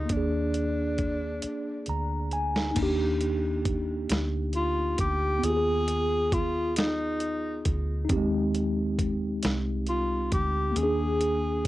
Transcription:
Already playing: tenor saxophone D#4
0.06 tine electric piano A#3, closed hi-hat
0.10 fingered electric bass D#2, tine electric piano D4, tenor saxophone D4, kick
0.17 tine electric piano G#4
0.54 closed hi-hat
0.98 kick, closed hi-hat
1.42 muted fingered electric bass stroke, closed hi-hat
1.86 fingered electric bass D2, tine electric piano A#5, closed hi-hat
2.31 tine electric piano G#5, closed hi-hat
2.56 snare
2.71 tine electric piano A#3 D#4
2.76 fingered electric bass D#2, tine electric piano D4, kick, closed hi-hat, crash
2.83 tine electric piano G4
3.20 closed hi-hat
3.65 kick, closed hi-hat
4.09 fingered electric bass D2, snare, closed hi-hat
4.53 tenor saxophone F4, closed hi-hat
4.98 fingered electric bass D2, tenor saxophone G4, kick, closed hi-hat
5.39 tine electric piano B3
5.43 fingered electric bass D#2, tine electric piano F4, tenor saxophone G#4, closed hi-hat
5.50 tine electric piano G4
5.57 tine electric piano G#4
5.88 closed hi-hat
6.32 tenor saxophone F4, kick, closed hi-hat
6.76 tenor saxophone D#4, snare, closed hi-hat
7.20 closed hi-hat
7.65 fingered electric bass D2, kick, closed hi-hat
8.05 tine electric piano D#4
8.09 fingered electric bass D#2, tine electric piano C4 G4, kick, closed hi-hat
8.17 tine electric piano G#3
8.55 closed hi-hat
8.99 kick, closed hi-hat
9.43 fingered electric bass C2, snare, closed hi-hat
9.87 tenor saxophone F4, closed hi-hat
10.32 fingered electric bass D2, tenor saxophone G4, kick, closed hi-hat
10.71 tine electric piano A#3
10.76 fingered electric bass D#2, tine electric piano C#4, tenor saxophone G#4, closed hi-hat
10.83 tine electric piano D4 G#4
11.21 closed hi-hat

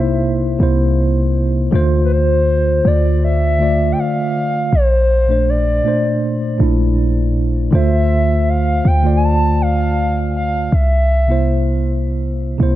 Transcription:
Already playing: 808-style bass C2, tine electric piano C3 A#3 D#4 E4 C5, soft synth lead E5
0.59 808-style bass C2, tine electric piano C3 A#3 E4
0.63 tine electric piano C5
1.71 808-style bass D2, tine electric piano D3 A3 F4
1.75 tine electric piano C5
2.05 soft synth lead B4
2.12 soft synth lead C5
2.83 808-style bass D2, tine electric piano D3 A3 F4, soft synth lead D5
2.88 tine electric piano D5
3.24 soft synth lead E5
3.58 tine electric piano D3 A3 F4
3.63 tine electric piano D5
3.92 soft synth lead G5
3.99 soft synth lead F5
4.73 808-style bass A#1, soft synth lead C5
5.27 tine electric piano A#2 A3 D4
5.31 tine electric piano C5
5.49 soft synth lead D5
5.83 tine electric piano A#2 A3 D4
5.88 tine electric piano C5
6.58 808-style bass A#1, tine electric piano A#2 A3 D4
6.62 tine electric piano E4
7.71 808-style bass D2, tine electric piano D3 A3 F4, soft synth lead E5
7.75 tine electric piano C5
8.49 soft synth lead F5
8.85 808-style bass D2, soft synth lead G5
9.02 tine electric piano D3 A3 F4
9.07 tine electric piano D5
9.17 soft synth lead G#5
9.24 soft synth lead A5
9.62 soft synth lead F5
10.37 soft synth lead F5
10.72 808-style bass C2, soft synth lead E5
11.27 tine electric piano C3 A#3 E4
11.31 tine electric piano C5
12.58 808-style bass C2, tine electric piano C3 A#3 E4
12.63 tine electric piano C5

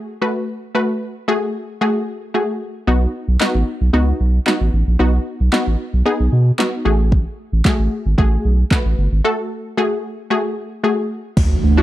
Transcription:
0.22 synth pluck A3 F#4 B4
0.75 synth pluck A3 F#4 B4
1.28 synth pluck A3 F#4 G#4
1.81 synth pluck A3 F#4 G#4
2.34 synth pluck A3 F#4 G#4
2.87 sub bass B1, synth pluck B3 D#4 F#4
3.28 sub bass B1
3.40 synth pluck B3 D#4 F#4, snare, clap
3.55 sub bass A1
3.81 sub bass B1
3.93 sub bass C#2, synth pluck B3 D#4 F#4
4.20 sub bass B1
4.46 synth pluck B3 D#4 F#4, snare, clap
4.61 sub bass A1
4.73 sub bass A1
4.87 sub bass A#1
4.99 sub bass B1, synth pluck B3 D#4 F#4
5.40 sub bass B1
5.53 synth pluck B3 D#4 F#4, snare, clap
5.67 sub bass A1
5.93 sub bass B1
6.06 synth pluck B3 D#4 G#4
6.20 sub bass B1
6.32 sub bass B2
6.59 synth pluck B3 D#4 F#4, snare, clap
6.85 sub bass A1, synth pluck A3 F#4 G#4
7.12 kick
7.53 sub bass A1
7.65 synth pluck A3 F#4 G#4, kick, snare, clap
7.79 sub bass A1
8.06 sub bass G#1
8.18 sub bass A1, synth pluck A3 F#4 G#4, kick
8.45 sub bass B1
8.71 synth pluck A3 F#4 B4, kick, snare, clap
8.85 sub bass A1
8.98 sub bass G1
9.12 sub bass G#1
9.24 synth pluck A3 F#4 A4
9.77 synth pluck A3 F#4 G#4
10.30 synth pluck A3 F#4 G#4
10.83 synth pluck A3 F#4 G#4
11.37 sub bass D2, analog synth pad E3 A3 D4 F#4, kick, crash, impact
11.63 sub bass D2
11.77 synth pluck D4 E4 F#4

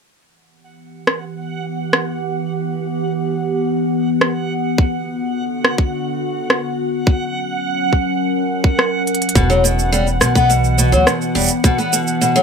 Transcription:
0.21 ambient pad E3, synth texture F#5
0.46 ambient pad B3 G4
0.54 ambient pad F#5
1.07 cross-stick
1.93 cross-stick
4.21 cross-stick
4.78 ambient pad D3, kick
4.85 ambient pad F#4
5.65 cross-stick
5.78 kick
6.50 cross-stick
7.06 ambient pad F#3, kick
7.12 ambient pad C#4
7.66 ambient pad A#4
7.93 kick
8.64 kick
8.79 cross-stick
9.07 closed hi-hat
9.15 closed hi-hat
9.22 closed hi-hat
9.29 closed hi-hat
9.35 upright bass E1, steel-string acoustic guitar B2, ambient pad E3, synth texture F#5, kick, cabasa
9.45 ambient pad B3
9.50 steel-string acoustic guitar F#3, cabasa
9.64 steel-string acoustic guitar B2, cabasa
9.79 cabasa
9.92 steel-string acoustic guitar G3, cabasa
10.07 cabasa
10.21 upright bass B1, steel-string acoustic guitar B2, cross-stick, cabasa
10.35 steel-string acoustic guitar B3, kick, cabasa
10.50 steel-string acoustic guitar B2, cabasa
10.64 cabasa
10.78 steel-string acoustic guitar B2, cabasa
10.92 upright bass D2, steel-string acoustic guitar F#3, cabasa
11.07 steel-string acoustic guitar B2, cross-stick, cabasa
11.22 cabasa
11.35 upright bass E1, steel-string acoustic guitar G3, cabasa
11.38 cabasa
11.41 cabasa
11.43 cabasa
11.46 cabasa
11.48 cabasa
11.50 cabasa
11.64 steel-string acoustic guitar B2, kick, cabasa
11.78 steel-string acoustic guitar B3, cabasa
11.93 steel-string acoustic guitar B2, cabasa
12.08 cabasa
12.21 steel-string acoustic guitar B2, cabasa
12.36 steel-string acoustic guitar F#3, cabasa

